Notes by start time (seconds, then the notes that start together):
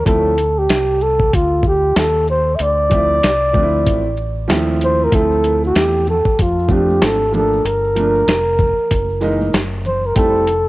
0.05 D2 F3 A3 C4 E4 A4, kick, closed hi-hat
0.38 closed hi-hat, shaker
0.58 G4
0.70 C2, snare, closed hi-hat
1.01 A4, shaker
1.20 kick
1.33 D2 F4, kick, closed hi-hat
1.63 kick, shaker
1.67 G4
1.96 D#2 A4, snare, closed hi-hat
2.28 C5, shaker
2.55 E5, closed hi-hat
2.60 D2 D5
2.89 F3 A3 C4 E4, kick, closed hi-hat, shaker
3.23 C2, snare, closed hi-hat
3.53 D2 F3 A3 C4 D4, kick, shaker
3.63 E4
3.87 A1, kick, closed hi-hat
4.17 shaker
4.48 D#2 F3 A3 C4 E4, snare, closed hi-hat
4.81 C5, closed hi-hat, shaker
5.04 A#4
5.11 D2 F3 A3 C4 E4 A4, kick, closed hi-hat, maracas
5.32 maracas
5.44 closed hi-hat, shaker, maracas
5.64 G4, maracas
5.75 E2, snare, closed hi-hat, maracas
5.96 maracas
6.07 A4, high conga, low conga, shaker, maracas
6.25 muted fingered electric bass stroke, kick, maracas
6.39 F2 F4, kick, closed hi-hat, high conga, maracas
6.59 maracas
6.68 F3 A3 C4 D4, kick, shaker, maracas
6.72 G4
6.90 high conga, maracas
7.02 G#1 A4, snare, closed hi-hat, maracas
7.22 maracas
7.32 F3 A3 A#3 D4 A4, low conga, shaker, maracas
7.53 maracas
7.65 G1 A#4, closed hi-hat, maracas
7.84 maracas
7.95 F3 A3 A#3 D4, closed hi-hat, shaker, maracas
8.15 maracas
8.27 F1, snare, closed hi-hat, maracas
8.47 maracas
8.59 kick, high conga, low conga, shaker, maracas
8.78 muted fingered electric bass stroke, maracas
8.91 F#1, kick, closed hi-hat, high conga, maracas
9.09 maracas
9.21 E3 G#3 A#3 D#4, shaker, maracas
9.41 high conga, maracas
9.53 F#1, snare, closed hi-hat, maracas
9.73 maracas
9.85 C5, low conga, shaker, maracas
10.04 A#4, maracas
10.15 F1 G3 A3 C4 E4 A4, kick, closed hi-hat, maracas
10.36 maracas
10.47 closed hi-hat, shaker, maracas